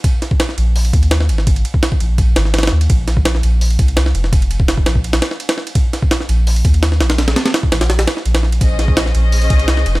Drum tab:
RD |x---x---x---x-----x-x-x-x---x---|x-x-x---x---x---x---x---xxxx--x-|x---x---x---x-----x-x-x-x---x---|x-x-x---x---x---x-x-x---x-x---x-|
HH |----------------o---------------|--------------------------------|----------------o---------------|--------------------------------|
SD |----o---o-o-------------o-o---o-|--------o-----------o-o-ooooo---|----o---o-o-------------o-o---o-|--------o---o-----o-o-o---o-o---|
BD |o-----o-------------o-----------|o-----o---o-----o---------------|o-----o-------------o-----------|o-----o---o---o-----------------|

RD |x---x---x---x-----x-x-x-x---x-x-|x-x-x-x-x---x-x-x-x-x---x-x---x-|x---x---x---x-----x-x-x-x---x---|
HH |----------------o---------------|--------------------------------|----------------o---------------|
SD |----o---o-o-------------o-o-o-o-|o-o-o-o-o---o-o-o-o-o-o---o-o---|----o---o-o-------------o-o---o-|
BD |o-----o-------------o-----------|----------o---------------------|o-----o-------------o-----------|